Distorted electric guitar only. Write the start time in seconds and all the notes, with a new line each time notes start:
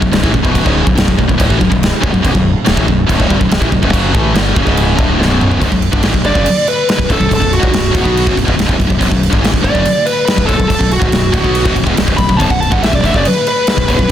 0.00 B1 F#2
0.12 B1 F#2
0.23 A2 E3
0.33 B1 F#2
0.43 B1 F#2 B2
0.64 C#2 G#2 C#3
0.85 B1 F#2
0.95 B1 F#2
1.05 B1 F#2
1.18 B1 F#2
1.28 B1 F#2
1.37 D2 A2
1.48 A2 E3
1.58 B1 F#2
1.69 B1 F#2
2.00 B1 F#2
2.11 B1 F#2
2.22 B1 F#2
2.34 B1 F#2
2.65 D2 A2
2.76 A2 E3
2.87 B1 F#2
3.07 B1 F#2
3.17 D2 A2
3.28 G2 D3
3.39 B1 F#2
3.50 B1 F#2
3.60 A2 E3
3.70 B1 F#2
3.82 B1 F#2
3.91 F#2 C#3 F#3
4.13 A2 E3 A3
4.34 G2 D3 G3
4.54 F#2 C#3
4.65 C#2 G#2 C#3
4.97 D2 A2 D3
5.18 B1 F#2 B2
5.60 B1 F#2
5.70 B1 F#2
5.92 G2 D3
6.02 A2 E3
6.14 B1 F#2
6.25 G2 D3
6.35 F#2 C#3
6.98 B1 F#2
7.09 B1 F#2
7.18 B1 F#2
7.29 B1 F#2
7.40 B1 F#2
7.59 C#2 G#2
7.71 B1 F#2
7.91 D2 A2
8.01 B2 F#3 B3
8.22 B1 F#2
8.35 B1 F#2
8.45 E2 B2
8.55 B1 F#2
8.66 B1 F#2
8.77 B1 F#2
8.87 B1 F#2
8.98 B1 F#2
9.09 B1 F#2
9.30 G2 D3
9.40 A2 E3
9.51 B1 F#2
9.62 G2 D3
9.72 F#2 C#3
10.37 B1 F#2
10.47 B1 F#2
10.57 B1 F#2
10.67 B1 F#2
10.79 B1 F#2
10.99 C#2 G#2
11.10 B1 F#2
11.32 D2 A2
11.42 B2 F#3 B3
11.64 B1 F#2
11.76 B1 F#2
11.86 E2 B2
11.97 B1 F#2
12.06 B1 F#2
12.17 B1 F#2
12.29 B1 F#2
12.39 B1 F#2
12.50 B1 F#2
12.71 G2 D3
12.82 A2 E3
12.92 B1 F#2
13.02 G2 D3
13.13 F#2 C#3
13.77 B1 F#2
13.88 B1 F#2
13.99 B1 F#2
14.08 B1